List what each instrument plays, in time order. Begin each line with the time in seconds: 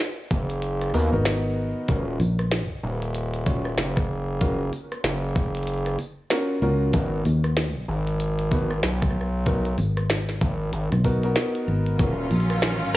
0.31 analog synth bass F#1, kick
0.50 closed hi-hat
0.62 closed hi-hat
0.81 cross-stick, closed hi-hat
0.90 cross-stick
0.94 analog synth bass D#2, grand piano B3 D#4 F#4 A#4, open hi-hat
1.00 cross-stick
1.12 fingered electric bass G#1, grand piano B3 D#4 F#4 A#4
1.25 snare, closed hi-hat
1.88 analog synth bass D#1, grand piano C#4 F4 F#4 A#4, kick, closed hi-hat
2.20 fingered electric bass A#1, open hi-hat
2.39 cross-stick, closed hi-hat
2.51 snare, closed hi-hat
2.83 analog synth bass D#1
3.02 closed hi-hat
3.15 closed hi-hat
3.34 closed hi-hat
3.46 grand piano C#4 F4 F#4 C#5, kick, open hi-hat
3.65 cross-stick
3.78 analog synth bass F#1, snare, closed hi-hat
3.97 kick, cross-stick
4.41 grand piano C#4 F4 F#4 A#4, kick, closed hi-hat
4.73 open hi-hat
4.92 cross-stick, closed hi-hat
5.04 analog synth bass F#1, snare, closed hi-hat
5.36 kick
5.55 closed hi-hat
5.57 closed hi-hat
5.63 closed hi-hat
5.67 closed hi-hat
5.74 closed hi-hat
5.78 closed hi-hat
5.86 cross-stick, closed hi-hat
5.99 open hi-hat
6.30 grand piano C#4 F4 F#4 A#4, snare, closed hi-hat
6.62 fingered electric bass C#2, grand piano C#4 F4 F#4 A#4
6.93 analog synth bass G#1, grand piano B3 D#4 F#4 A#4, kick, closed hi-hat
7.25 fingered electric bass D#2, open hi-hat
7.44 cross-stick, closed hi-hat
7.57 snare, closed hi-hat
7.88 analog synth bass G#1
8.07 closed hi-hat
8.20 closed hi-hat
8.39 closed hi-hat
8.51 grand piano B3 D#4 F#4 B4, kick, open hi-hat
8.71 cross-stick
8.83 analog synth bass B1, snare, closed hi-hat
9.02 kick, cross-stick
9.11 cross-stick
9.21 cross-stick
9.46 grand piano B3 D#4 F#4 A#4, kick, closed hi-hat
9.65 closed hi-hat
9.78 fingered electric bass G#1, open hi-hat
9.97 cross-stick, closed hi-hat
10.10 snare, closed hi-hat
10.29 snare, closed hi-hat
10.41 analog synth bass G#1, kick
10.73 analog synth bass G#1, closed hi-hat
10.92 fingered electric bass B1, cross-stick, closed hi-hat
11.04 grand piano B3 D#4 F#4 A#4, kick, open hi-hat
11.23 grand piano B3 D#4 F#4 A#4, closed hi-hat
11.36 snare, closed hi-hat
11.55 closed hi-hat
11.68 fingered electric bass G#1
11.86 closed hi-hat
11.99 analog synth bass D#1, string section D#3 F#3 C#4 F4, grand piano C#4 F4 F#4 A#4, kick, closed hi-hat
12.31 fingered electric bass A#1, open hi-hat
12.40 open hi-hat
12.50 cross-stick, closed hi-hat, open hi-hat
12.56 open hi-hat
12.62 snare, closed hi-hat
12.74 fingered electric bass A1